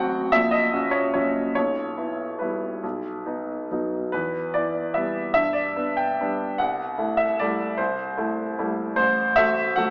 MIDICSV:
0, 0, Header, 1, 2, 480
1, 0, Start_track
1, 0, Key_signature, 1, "minor"
1, 0, Tempo, 391645
1, 403, Time_signature, 3, 2, 24, 8
1, 885, Tempo, 416667
1, 2325, Tempo, 430108
1, 4725, Tempo, 414651
1, 7125, Tempo, 396563
1, 11611, End_track
2, 0, Start_track
2, 0, Title_t, "Grand piano"
2, 0, Program_c, 0, 0
2, 0, Control_c, 0, 64, 127
2, 0, Note_on_c, 0, 33, 51
2, 0, Note_on_c, 0, 54, 37
2, 0, Note_on_c, 0, 60, 37
2, 0, Note_on_c, 0, 66, 38
2, 0, Note_on_c, 0, 78, 65
2, 0, Note_on_c, 0, 79, 63
2, 0, Note_on_c, 0, 81, 70
2, 353, Note_off_c, 0, 54, 0
2, 360, Note_off_c, 0, 60, 0
2, 361, Note_off_c, 0, 66, 0
2, 393, Note_on_c, 0, 76, 83
2, 395, Note_off_c, 0, 78, 0
2, 400, Note_on_c, 0, 34, 52
2, 423, Control_c, 0, 64, 0
2, 428, Note_off_c, 0, 33, 0
2, 431, Note_off_c, 0, 79, 0
2, 431, Note_off_c, 0, 81, 0
2, 605, Control_c, 0, 64, 127
2, 626, Note_on_c, 0, 75, 65
2, 635, Note_off_c, 0, 76, 0
2, 869, Note_off_c, 0, 34, 0
2, 895, Note_on_c, 0, 61, 38
2, 898, Note_on_c, 0, 66, 40
2, 1104, Note_on_c, 0, 73, 59
2, 1115, Note_off_c, 0, 75, 0
2, 1324, Note_off_c, 0, 61, 0
2, 1325, Note_off_c, 0, 66, 0
2, 1345, Note_off_c, 0, 73, 0
2, 1362, Note_on_c, 0, 73, 59
2, 1375, Note_on_c, 0, 54, 33
2, 1383, Note_on_c, 0, 61, 34
2, 1383, Note_on_c, 0, 66, 35
2, 1805, Note_off_c, 0, 54, 0
2, 1809, Note_off_c, 0, 61, 0
2, 1809, Note_off_c, 0, 66, 0
2, 1824, Note_off_c, 0, 73, 0
2, 1842, Note_on_c, 0, 73, 62
2, 1857, Note_on_c, 0, 35, 45
2, 1864, Control_c, 0, 64, 0
2, 2026, Control_c, 0, 64, 127
2, 2317, Note_off_c, 0, 35, 0
2, 2326, Note_on_c, 0, 59, 29
2, 2331, Note_on_c, 0, 64, 33
2, 2768, Note_off_c, 0, 59, 0
2, 2770, Note_off_c, 0, 64, 0
2, 2789, Note_on_c, 0, 71, 41
2, 2806, Note_on_c, 0, 55, 29
2, 2810, Note_off_c, 0, 73, 0
2, 2810, Note_on_c, 0, 59, 28
2, 2813, Note_on_c, 0, 64, 32
2, 3237, Note_off_c, 0, 55, 0
2, 3240, Note_off_c, 0, 59, 0
2, 3241, Note_off_c, 0, 64, 0
2, 3288, Note_on_c, 0, 35, 38
2, 3308, Control_c, 0, 64, 0
2, 3473, Control_c, 0, 64, 127
2, 3743, Note_off_c, 0, 35, 0
2, 3763, Note_on_c, 0, 63, 34
2, 3764, Note_on_c, 0, 59, 29
2, 4210, Note_off_c, 0, 59, 0
2, 4210, Note_off_c, 0, 63, 0
2, 4240, Note_off_c, 0, 71, 0
2, 4268, Note_on_c, 0, 54, 28
2, 4271, Note_on_c, 0, 59, 29
2, 4272, Note_on_c, 0, 63, 31
2, 4689, Note_off_c, 0, 54, 0
2, 4690, Note_off_c, 0, 59, 0
2, 4690, Note_off_c, 0, 63, 0
2, 4725, Note_on_c, 0, 71, 62
2, 4741, Note_on_c, 0, 40, 44
2, 4744, Control_c, 0, 64, 0
2, 4954, Control_c, 0, 64, 127
2, 5190, Note_off_c, 0, 40, 0
2, 5196, Note_off_c, 0, 71, 0
2, 5206, Note_on_c, 0, 74, 66
2, 5215, Note_on_c, 0, 59, 35
2, 5223, Note_on_c, 0, 64, 36
2, 5641, Note_off_c, 0, 59, 0
2, 5644, Note_off_c, 0, 64, 0
2, 5672, Note_on_c, 0, 76, 49
2, 5682, Note_off_c, 0, 74, 0
2, 5686, Note_on_c, 0, 55, 31
2, 5691, Note_on_c, 0, 59, 34
2, 5691, Note_on_c, 0, 64, 32
2, 6104, Note_off_c, 0, 55, 0
2, 6107, Note_off_c, 0, 59, 0
2, 6107, Note_off_c, 0, 64, 0
2, 6115, Note_off_c, 0, 76, 0
2, 6132, Note_on_c, 0, 76, 77
2, 6144, Note_on_c, 0, 43, 48
2, 6165, Control_c, 0, 64, 0
2, 6327, Control_c, 0, 64, 127
2, 6355, Note_on_c, 0, 74, 53
2, 6372, Note_off_c, 0, 76, 0
2, 6610, Note_off_c, 0, 43, 0
2, 6624, Note_on_c, 0, 59, 34
2, 6632, Note_on_c, 0, 62, 36
2, 6861, Note_on_c, 0, 79, 66
2, 6867, Note_off_c, 0, 74, 0
2, 7077, Note_off_c, 0, 59, 0
2, 7080, Note_off_c, 0, 62, 0
2, 7139, Note_on_c, 0, 55, 30
2, 7140, Note_on_c, 0, 59, 33
2, 7141, Note_on_c, 0, 62, 37
2, 7564, Note_off_c, 0, 55, 0
2, 7565, Note_off_c, 0, 59, 0
2, 7565, Note_off_c, 0, 62, 0
2, 7594, Note_off_c, 0, 79, 0
2, 7594, Note_on_c, 0, 78, 68
2, 7605, Note_on_c, 0, 36, 49
2, 7622, Control_c, 0, 64, 0
2, 7837, Control_c, 0, 64, 127
2, 8068, Note_off_c, 0, 36, 0
2, 8073, Note_on_c, 0, 57, 33
2, 8076, Note_on_c, 0, 64, 41
2, 8306, Note_on_c, 0, 76, 60
2, 8323, Note_off_c, 0, 78, 0
2, 8521, Note_off_c, 0, 57, 0
2, 8522, Note_off_c, 0, 64, 0
2, 8563, Note_off_c, 0, 76, 0
2, 8576, Note_on_c, 0, 74, 66
2, 8591, Note_on_c, 0, 55, 37
2, 8594, Note_on_c, 0, 57, 37
2, 8595, Note_on_c, 0, 64, 38
2, 9008, Note_off_c, 0, 55, 0
2, 9009, Note_off_c, 0, 57, 0
2, 9010, Note_off_c, 0, 64, 0
2, 9037, Note_on_c, 0, 72, 59
2, 9046, Note_off_c, 0, 74, 0
2, 9053, Note_on_c, 0, 36, 45
2, 9066, Control_c, 0, 64, 0
2, 9236, Control_c, 0, 64, 127
2, 9505, Note_off_c, 0, 36, 0
2, 9520, Note_on_c, 0, 57, 42
2, 9523, Note_on_c, 0, 64, 44
2, 9960, Note_off_c, 0, 57, 0
2, 9962, Note_off_c, 0, 64, 0
2, 10017, Note_on_c, 0, 55, 38
2, 10022, Note_on_c, 0, 57, 40
2, 10022, Note_on_c, 0, 64, 44
2, 10442, Note_off_c, 0, 55, 0
2, 10444, Note_off_c, 0, 57, 0
2, 10444, Note_off_c, 0, 64, 0
2, 10455, Note_off_c, 0, 72, 0
2, 10473, Note_on_c, 0, 72, 70
2, 10487, Note_on_c, 0, 33, 46
2, 10501, Control_c, 0, 64, 0
2, 10690, Control_c, 0, 64, 127
2, 10940, Note_off_c, 0, 33, 0
2, 10947, Note_off_c, 0, 72, 0
2, 10952, Note_on_c, 0, 76, 79
2, 10970, Note_on_c, 0, 57, 43
2, 10972, Note_on_c, 0, 66, 47
2, 11399, Note_off_c, 0, 57, 0
2, 11401, Note_off_c, 0, 66, 0
2, 11437, Note_on_c, 0, 78, 68
2, 11438, Note_off_c, 0, 76, 0
2, 11454, Note_on_c, 0, 54, 42
2, 11457, Note_on_c, 0, 57, 40
2, 11462, Note_on_c, 0, 66, 45
2, 11611, Note_off_c, 0, 54, 0
2, 11611, Note_off_c, 0, 57, 0
2, 11611, Note_off_c, 0, 66, 0
2, 11611, Note_off_c, 0, 78, 0
2, 11611, End_track
0, 0, End_of_file